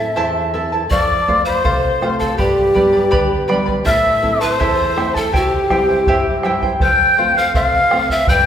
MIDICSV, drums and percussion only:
0, 0, Header, 1, 2, 480
1, 0, Start_track
1, 0, Tempo, 738916
1, 587, Time_signature, 2, 2, 24, 8
1, 5496, End_track
2, 0, Start_track
2, 0, Title_t, "Bombo"
2, 590, Note_on_c, 9, 43, 71
2, 655, Note_off_c, 9, 43, 0
2, 834, Note_on_c, 9, 43, 52
2, 899, Note_off_c, 9, 43, 0
2, 1071, Note_on_c, 9, 43, 77
2, 1136, Note_off_c, 9, 43, 0
2, 1315, Note_on_c, 9, 37, 42
2, 1380, Note_off_c, 9, 37, 0
2, 1438, Note_on_c, 9, 43, 49
2, 1503, Note_off_c, 9, 43, 0
2, 1551, Note_on_c, 9, 43, 62
2, 1616, Note_off_c, 9, 43, 0
2, 1794, Note_on_c, 9, 43, 49
2, 1859, Note_off_c, 9, 43, 0
2, 2032, Note_on_c, 9, 43, 74
2, 2097, Note_off_c, 9, 43, 0
2, 2271, Note_on_c, 9, 37, 41
2, 2336, Note_off_c, 9, 37, 0
2, 2391, Note_on_c, 9, 43, 50
2, 2456, Note_off_c, 9, 43, 0
2, 2509, Note_on_c, 9, 43, 61
2, 2574, Note_off_c, 9, 43, 0
2, 2751, Note_on_c, 9, 43, 44
2, 2816, Note_off_c, 9, 43, 0
2, 2991, Note_on_c, 9, 43, 68
2, 3056, Note_off_c, 9, 43, 0
2, 3233, Note_on_c, 9, 37, 48
2, 3298, Note_off_c, 9, 37, 0
2, 3348, Note_on_c, 9, 43, 47
2, 3413, Note_off_c, 9, 43, 0
2, 3467, Note_on_c, 9, 43, 69
2, 3532, Note_off_c, 9, 43, 0
2, 3705, Note_on_c, 9, 37, 53
2, 3705, Note_on_c, 9, 43, 53
2, 3770, Note_off_c, 9, 37, 0
2, 3770, Note_off_c, 9, 43, 0
2, 3942, Note_on_c, 9, 43, 78
2, 4007, Note_off_c, 9, 43, 0
2, 4179, Note_on_c, 9, 37, 51
2, 4244, Note_off_c, 9, 37, 0
2, 4302, Note_on_c, 9, 43, 52
2, 4367, Note_off_c, 9, 43, 0
2, 4419, Note_on_c, 9, 43, 79
2, 4484, Note_off_c, 9, 43, 0
2, 4901, Note_on_c, 9, 43, 77
2, 4966, Note_off_c, 9, 43, 0
2, 5139, Note_on_c, 9, 37, 53
2, 5204, Note_off_c, 9, 37, 0
2, 5257, Note_on_c, 9, 43, 52
2, 5322, Note_off_c, 9, 43, 0
2, 5374, Note_on_c, 9, 43, 85
2, 5439, Note_off_c, 9, 43, 0
2, 5496, End_track
0, 0, End_of_file